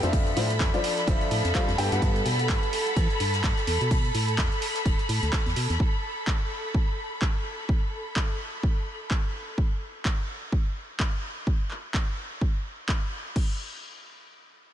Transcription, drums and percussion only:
0.03 closed hi-hat
0.13 kick, closed hi-hat, open hi-hat
0.27 closed hi-hat
0.37 open hi-hat, ride
0.50 closed hi-hat
0.60 kick, snare, clap, closed hi-hat, ride
0.74 closed hi-hat
0.84 open hi-hat, ride
0.98 snare, closed hi-hat
1.07 kick, closed hi-hat, ride
1.21 closed hi-hat
1.31 open hi-hat, ride
1.45 snare, closed hi-hat
1.55 kick, snare, clap, closed hi-hat, ride
1.68 snare, closed hi-hat
1.78 open hi-hat, ride
1.92 snare, closed hi-hat
2.02 kick, closed hi-hat, ride
2.16 closed hi-hat
2.26 open hi-hat, ride
2.39 closed hi-hat
2.49 kick, snare, clap, closed hi-hat, ride
2.63 closed hi-hat
2.73 open hi-hat, ride
2.87 closed hi-hat, ride
2.96 kick, closed hi-hat, ride
3.10 closed hi-hat
3.20 open hi-hat, ride
3.33 snare, closed hi-hat
3.44 kick, snare, clap, closed hi-hat, ride
3.57 snare, closed hi-hat
3.67 snare, open hi-hat, ride
3.81 closed hi-hat
3.91 kick, closed hi-hat, open hi-hat
4.05 closed hi-hat
4.14 open hi-hat, ride
4.28 closed hi-hat
4.38 kick, snare, clap, closed hi-hat, ride
4.52 closed hi-hat
4.62 open hi-hat, ride
4.74 snare, closed hi-hat
4.85 kick, closed hi-hat, ride
4.99 closed hi-hat
5.09 open hi-hat, ride
5.23 snare, closed hi-hat
5.32 kick, snare, clap, closed hi-hat, ride
5.46 snare, closed hi-hat
5.56 open hi-hat, ride
5.70 snare, closed hi-hat
5.80 kick
6.27 kick, clap
6.74 kick
7.22 kick, clap
7.69 kick
8.16 kick, clap
8.63 kick
9.11 kick, clap
9.58 kick
10.05 kick, clap
10.52 kick
11.00 kick, clap
11.47 kick
11.71 clap
11.94 kick, clap
12.41 kick
12.89 kick, clap
13.36 kick, crash

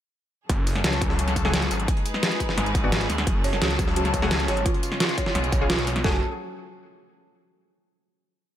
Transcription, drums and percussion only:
0.49 kick, closed hi-hat
0.67 closed hi-hat, open hi-hat, tambourine
0.76 snare, closed hi-hat
0.84 snare, closed hi-hat
0.93 snare, closed hi-hat, tambourine
1.02 kick, closed hi-hat, tambourine
1.10 snare
1.19 closed hi-hat
1.28 snare, closed hi-hat, tambourine
1.36 kick, closed hi-hat, tambourine
1.45 snare
1.53 snare, closed hi-hat
1.62 closed hi-hat, tambourine
1.71 closed hi-hat, tambourine
1.80 closed hi-hat
1.88 kick, closed hi-hat
1.97 closed hi-hat
2.06 closed hi-hat, tambourine
2.14 snare
2.23 snare, closed hi-hat
2.32 closed hi-hat, tambourine
2.40 kick, closed hi-hat, tambourine
2.49 snare
2.58 snare, closed hi-hat
2.66 closed hi-hat, tambourine
2.75 kick, closed hi-hat, tambourine
2.92 snare, closed hi-hat
3.01 snare, closed hi-hat, tambourine
3.10 snare, closed hi-hat, tambourine
3.18 snare, closed hi-hat
3.27 kick, closed hi-hat
3.44 closed hi-hat, open hi-hat, tambourine
3.53 snare, closed hi-hat
3.62 snare, closed hi-hat
3.70 snare, closed hi-hat, tambourine
3.79 kick, closed hi-hat, tambourine
3.88 snare
3.96 closed hi-hat
4.05 snare, closed hi-hat, tambourine
4.14 kick, closed hi-hat, tambourine
4.22 snare
4.31 snare, closed hi-hat
4.40 closed hi-hat, tambourine
4.48 snare, closed hi-hat, tambourine
4.57 closed hi-hat
4.66 kick, closed hi-hat
4.74 closed hi-hat
4.83 closed hi-hat, tambourine
4.92 snare
5.00 snare, closed hi-hat
5.09 closed hi-hat, tambourine
5.18 kick, closed hi-hat, tambourine
5.26 snare
5.35 snare, closed hi-hat
5.44 closed hi-hat, tambourine
5.52 kick, closed hi-hat, tambourine
5.70 snare, closed hi-hat
5.78 snare, closed hi-hat, tambourine
5.87 snare, closed hi-hat, tambourine
5.96 snare, closed hi-hat
6.04 kick, snare

